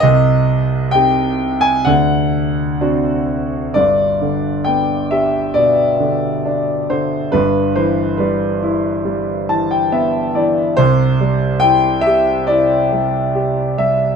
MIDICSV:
0, 0, Header, 1, 2, 480
1, 0, Start_track
1, 0, Tempo, 931677
1, 19, Time_signature, 4, 2, 24, 8
1, 1940, Tempo, 900901
1, 3380, Tempo, 860832
1, 7668, End_track
2, 0, Start_track
2, 0, Title_t, "Grand piano"
2, 0, Program_c, 0, 0
2, 0, Control_c, 0, 64, 127
2, 1, Note_on_c, 0, 75, 115
2, 14, Note_on_c, 0, 36, 71
2, 16, Note_on_c, 0, 48, 82
2, 26, Control_c, 0, 64, 0
2, 102, Control_c, 0, 64, 127
2, 471, Note_on_c, 0, 79, 96
2, 484, Note_on_c, 0, 60, 57
2, 486, Note_on_c, 0, 63, 50
2, 489, Note_on_c, 0, 67, 57
2, 493, Note_off_c, 0, 75, 0
2, 828, Note_on_c, 0, 80, 91
2, 851, Note_off_c, 0, 79, 0
2, 944, Note_off_c, 0, 36, 0
2, 945, Note_off_c, 0, 48, 0
2, 951, Note_off_c, 0, 60, 0
2, 951, Note_on_c, 0, 78, 89
2, 952, Note_off_c, 0, 63, 0
2, 953, Note_off_c, 0, 67, 0
2, 960, Note_on_c, 0, 38, 69
2, 961, Note_off_c, 0, 80, 0
2, 962, Note_on_c, 0, 50, 77
2, 974, Control_c, 0, 64, 0
2, 1057, Control_c, 0, 64, 127
2, 1447, Note_on_c, 0, 60, 56
2, 1447, Note_on_c, 0, 62, 50
2, 1451, Note_on_c, 0, 66, 64
2, 1671, Note_off_c, 0, 78, 0
2, 1915, Note_off_c, 0, 38, 0
2, 1916, Note_off_c, 0, 50, 0
2, 1921, Note_off_c, 0, 60, 0
2, 1921, Note_off_c, 0, 62, 0
2, 1923, Note_off_c, 0, 66, 0
2, 1927, Note_on_c, 0, 74, 87
2, 1936, Note_on_c, 0, 43, 58
2, 1937, Note_on_c, 0, 31, 50
2, 1946, Control_c, 0, 64, 0
2, 2024, Control_c, 0, 64, 127
2, 2180, Note_on_c, 0, 50, 48
2, 2408, Note_on_c, 0, 79, 80
2, 2425, Note_on_c, 0, 59, 46
2, 2435, Note_off_c, 0, 74, 0
2, 2655, Note_on_c, 0, 76, 84
2, 2660, Note_on_c, 0, 67, 54
2, 2665, Note_off_c, 0, 79, 0
2, 2885, Note_on_c, 0, 74, 82
2, 2897, Note_on_c, 0, 47, 53
2, 2906, Note_off_c, 0, 76, 0
2, 3118, Note_off_c, 0, 50, 0
2, 3131, Note_on_c, 0, 50, 46
2, 3358, Note_off_c, 0, 59, 0
2, 3371, Note_on_c, 0, 62, 60
2, 3601, Note_off_c, 0, 67, 0
2, 3612, Note_off_c, 0, 50, 0
2, 3620, Note_on_c, 0, 50, 49
2, 3620, Note_on_c, 0, 72, 80
2, 3640, Note_off_c, 0, 74, 0
2, 3843, Note_off_c, 0, 47, 0
2, 3845, Note_off_c, 0, 31, 0
2, 3845, Note_off_c, 0, 43, 0
2, 3848, Note_off_c, 0, 72, 0
2, 3850, Note_off_c, 0, 62, 0
2, 3854, Note_on_c, 0, 71, 94
2, 3858, Note_off_c, 0, 50, 0
2, 3862, Note_on_c, 0, 43, 67
2, 3866, Note_on_c, 0, 31, 64
2, 3877, Control_c, 0, 64, 0
2, 3963, Control_c, 0, 64, 127
2, 4097, Note_on_c, 0, 72, 85
2, 4101, Note_on_c, 0, 52, 60
2, 4107, Note_off_c, 0, 71, 0
2, 4332, Note_on_c, 0, 71, 65
2, 4343, Note_on_c, 0, 55, 58
2, 4347, Note_off_c, 0, 72, 0
2, 4583, Note_on_c, 0, 64, 60
2, 4811, Note_off_c, 0, 55, 0
2, 4820, Note_on_c, 0, 55, 58
2, 5037, Note_off_c, 0, 52, 0
2, 5065, Note_on_c, 0, 52, 54
2, 5066, Note_on_c, 0, 81, 72
2, 5175, Note_off_c, 0, 81, 0
2, 5187, Note_on_c, 0, 79, 70
2, 5294, Note_off_c, 0, 79, 0
2, 5305, Note_on_c, 0, 59, 62
2, 5306, Note_on_c, 0, 76, 76
2, 5508, Note_off_c, 0, 71, 0
2, 5514, Note_off_c, 0, 64, 0
2, 5524, Note_off_c, 0, 76, 0
2, 5535, Note_off_c, 0, 52, 0
2, 5544, Note_on_c, 0, 52, 57
2, 5544, Note_on_c, 0, 74, 68
2, 5750, Note_off_c, 0, 43, 0
2, 5752, Note_off_c, 0, 31, 0
2, 5752, Note_off_c, 0, 55, 0
2, 5762, Note_off_c, 0, 74, 0
2, 5764, Note_off_c, 0, 59, 0
2, 5772, Note_off_c, 0, 52, 0
2, 5776, Note_on_c, 0, 72, 117
2, 5783, Control_c, 0, 64, 0
2, 5783, Note_on_c, 0, 36, 71
2, 5784, Note_on_c, 0, 48, 78
2, 5888, Control_c, 0, 64, 127
2, 6022, Note_on_c, 0, 55, 58
2, 6231, Note_off_c, 0, 72, 0
2, 6240, Note_on_c, 0, 79, 105
2, 6258, Note_on_c, 0, 64, 60
2, 6472, Note_on_c, 0, 76, 99
2, 6493, Note_off_c, 0, 79, 0
2, 6500, Note_on_c, 0, 67, 65
2, 6705, Note_off_c, 0, 76, 0
2, 6725, Note_on_c, 0, 74, 82
2, 6729, Note_off_c, 0, 64, 0
2, 6738, Note_on_c, 0, 64, 60
2, 6955, Note_off_c, 0, 55, 0
2, 6978, Note_on_c, 0, 55, 52
2, 7189, Note_off_c, 0, 74, 0
2, 7209, Note_off_c, 0, 67, 0
2, 7217, Note_on_c, 0, 67, 57
2, 7448, Note_off_c, 0, 55, 0
2, 7457, Note_on_c, 0, 55, 50
2, 7459, Note_on_c, 0, 76, 88
2, 7668, Note_off_c, 0, 36, 0
2, 7668, Note_off_c, 0, 48, 0
2, 7668, Note_off_c, 0, 55, 0
2, 7668, Note_off_c, 0, 64, 0
2, 7668, Note_off_c, 0, 67, 0
2, 7668, Note_off_c, 0, 76, 0
2, 7668, End_track
0, 0, End_of_file